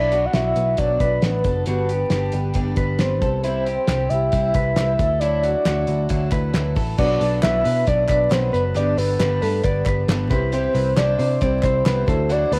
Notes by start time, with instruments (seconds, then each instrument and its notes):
Already playing: picked electric bass B1, twelve-string acoustic guitar B2 F#3 B3, clean electric guitar E4, soft synth lead D5
0.11 twelve-string acoustic guitar F#3 B3 D4, clean electric guitar F#4, closed hi-hat
0.26 soft synth lead F#5
0.33 picked electric bass B1, twelve-string acoustic guitar B2 F#3 B3 D4, clean electric guitar F#4, soft synth lead E5, snare, closed hi-hat
0.55 picked electric bass B1, twelve-string acoustic guitar F#3 B3 D4, closed hi-hat
0.77 picked electric bass B1, twelve-string acoustic guitar B2 F#3 B3 D4, soft synth lead D5, kick, closed hi-hat
0.99 picked electric bass B1, twelve-string acoustic guitar F#3 B3 D4, clean electric guitar B4, kick, closed hi-hat
1.21 picked electric bass A1, twelve-string acoustic guitar B2 F#3 B3 D4, soft synth lead B4, snare, closed hi-hat
1.44 picked electric bass F#1, twelve-string acoustic guitar F#3 B3 D4, clean electric guitar A4, kick, closed hi-hat
1.66 picked electric bass G1, twelve-string acoustic guitar G2 D3 G3 B3 D4, clean electric guitar F#4, soft synth lead B4, closed hi-hat
1.89 twelve-string acoustic guitar G3 B3 D4, clean electric guitar G4, closed hi-hat
2.10 picked electric bass G1, twelve-string acoustic guitar D3 G3 B3 D4, clean electric guitar G4, snare, closed hi-hat
2.32 picked electric bass G1, twelve-string acoustic guitar G3 B3 D4, closed hi-hat
2.54 picked electric bass G1, twelve-string acoustic guitar G2 D3 G3 B3 D4, kick, closed hi-hat
2.76 picked electric bass G1, twelve-string acoustic guitar G3 B3 D4, clean electric guitar B4, kick, closed hi-hat
2.99 picked electric bass G1, twelve-string acoustic guitar D3 G3 B3 D4, soft synth lead C5, snare, closed hi-hat
3.22 picked electric bass C2, twelve-string acoustic guitar G3 C4 E4, clean electric guitar A4, kick, closed hi-hat
3.43 twelve-string acoustic guitar C3 G3 C4 E4, clean electric guitar E4, soft synth lead C5, closed hi-hat
3.67 twelve-string acoustic guitar G3 C4 E4, clean electric guitar G4, closed hi-hat
3.87 picked electric bass C2, twelve-string acoustic guitar C3 G3 C4, clean electric guitar G4, snare, clap, closed hi-hat
3.92 twelve-string acoustic guitar E4
4.09 picked electric bass C2, twelve-string acoustic guitar C4 E4, soft synth lead E5, closed hi-hat
4.13 twelve-string acoustic guitar G3
4.32 picked electric bass C2, twelve-string acoustic guitar C3 G3 C4 E4, kick, closed hi-hat
4.54 picked electric bass C2, twelve-string acoustic guitar G3 C4 E4, clean electric guitar B4, kick, closed hi-hat
4.76 picked electric bass C2, twelve-string acoustic guitar C3 G3 C4 E4, soft synth lead E5, snare, clap, closed hi-hat
4.99 picked electric bass D2, twelve-string acoustic guitar F#3 A3 E4, clean electric guitar A4, kick, closed hi-hat
5.20 twelve-string acoustic guitar D3 F#3 A3 E4, clean electric guitar E4, soft synth lead D5, closed hi-hat
5.43 twelve-string acoustic guitar F#3 A3 E4, clean electric guitar F#4, closed hi-hat
5.65 picked electric bass D2, twelve-string acoustic guitar D3 F#3 A3 E4, clean electric guitar F#4, snare, clap, closed hi-hat
5.87 picked electric bass D2, twelve-string acoustic guitar F#3 A3 E4, closed hi-hat
6.09 picked electric bass D2, twelve-string acoustic guitar D3 F#3 A3 E4, kick, closed hi-hat
6.31 picked electric bass D2, twelve-string acoustic guitar F#3 A3 E4, clean electric guitar B4, kick, clap, closed hi-hat
6.54 picked electric bass D2, twelve-string acoustic guitar D3 F#3 A3 E4, snare, clap, closed hi-hat
6.76 picked electric bass A1, twelve-string acoustic guitar F#3 A3 E4, clean electric guitar A4, kick, open hi-hat
6.98 picked electric bass B1, twelve-string acoustic guitar B2 F#3 B3 D4, upright piano B3 D4 F#4 B4, clean electric guitar F#4, soft synth lead D5, kick, crash
7.20 picked electric bass B1, twelve-string acoustic guitar F#3 B3 D4, clean electric guitar A4, hi-hat pedal, open hi-hat
7.42 picked electric bass B1, twelve-string acoustic guitar B2 F#3 B3 D4, clean electric guitar B4, soft synth lead E5, snare, clap, hi-hat pedal, open hi-hat
7.64 picked electric bass B2, twelve-string acoustic guitar F#3 B3 D4, clean electric guitar B4, hi-hat pedal, open hi-hat
7.86 picked electric bass B1, twelve-string acoustic guitar B2 F#3 B3 D4, soft synth lead D5, clean electric guitar D5, kick, hi-hat pedal, open hi-hat
8.08 picked electric bass B1, twelve-string acoustic guitar F#3 B3 D4, clean electric guitar B4, soft synth lead D5, kick, clap, hi-hat pedal, open hi-hat
8.29 picked electric bass B1, twelve-string acoustic guitar B2 F#3 B3 D4, soft synth lead C5, snare, clap, hi-hat pedal, open hi-hat
8.52 picked electric bass F#1, twelve-string acoustic guitar F#3 B3 D4, clean electric guitar B4, soft synth lead B4, hi-hat pedal, open hi-hat
8.75 picked electric bass G1, twelve-string acoustic guitar G2 D3 G3 B3 D4, upright piano B3 D4 G4 B4, clean electric guitar G4, soft synth lead D5, hi-hat pedal, open hi-hat
8.97 picked electric bass G1, twelve-string acoustic guitar G3 B3 D4, clean electric guitar A4, soft synth lead B4, hi-hat pedal, open hi-hat
9.19 picked electric bass G1, twelve-string acoustic guitar G2 D3 G3 B3 D4, clean electric guitar B4, snare, clap, hi-hat pedal, open hi-hat
9.41 picked electric bass G2, twelve-string acoustic guitar G3 B3 D4, soft synth lead A4, clean electric guitar B4, hi-hat pedal, open hi-hat
9.63 picked electric bass G1, twelve-string acoustic guitar D3 G3 B3 D4, soft synth lead B4, clean electric guitar D5, kick, hi-hat pedal, open hi-hat
9.85 picked electric bass G1, twelve-string acoustic guitar G3 B3 D4, clean electric guitar B4, kick, clap, hi-hat pedal, open hi-hat
10.08 picked electric bass G1, twelve-string acoustic guitar G2 D3 G3 B3 D4, snare, clap, hi-hat pedal, open hi-hat
10.30 picked electric bass C2, twelve-string acoustic guitar G3 C4 E4, upright piano C4 E4 G4 C5, clean electric guitar B4, kick, hi-hat pedal, open hi-hat
10.52 twelve-string acoustic guitar C3 G3 C4 E4, clean electric guitar G4, soft synth lead C5, hi-hat pedal, open hi-hat
10.74 picked electric bass C2, twelve-string acoustic guitar G3 C4 E4, clean electric guitar B4, hi-hat pedal, open hi-hat
10.96 picked electric bass C2, twelve-string acoustic guitar C3 G3 C4 E4, clean electric guitar C5, soft synth lead D5, snare, clap, hi-hat pedal, open hi-hat
11.18 picked electric bass C3, twelve-string acoustic guitar G3 C4 E4, clean electric guitar C5, hi-hat pedal, open hi-hat
11.40 picked electric bass C2, twelve-string acoustic guitar C3 G3 C4 E4, upright piano C4 E4 G4 C5, soft synth lead C5, clean electric guitar D5, kick, hi-hat pedal, open hi-hat
11.62 picked electric bass C2, twelve-string acoustic guitar G3 C4 E4, clean electric guitar C5, soft synth lead C5, kick, clap, hi-hat pedal, open hi-hat
11.85 picked electric bass C2, twelve-string acoustic guitar C3 G3 C4 E4, soft synth lead B4, snare, clap, hi-hat pedal, open hi-hat
12.06 picked electric bass D2, twelve-string acoustic guitar F#3 A3 E4, upright piano D4 E4 F#4 A4, soft synth lead A4, clean electric guitar C5, kick, hi-hat pedal, open hi-hat
12.29 twelve-string acoustic guitar D3 F#3 A3 E4, clean electric guitar F#4, soft synth lead D5, hi-hat pedal, open hi-hat
12.52 picked electric bass D2, twelve-string acoustic guitar F#3 A3 E4, clean electric guitar A4, soft synth lead B4, hi-hat pedal, open hi-hat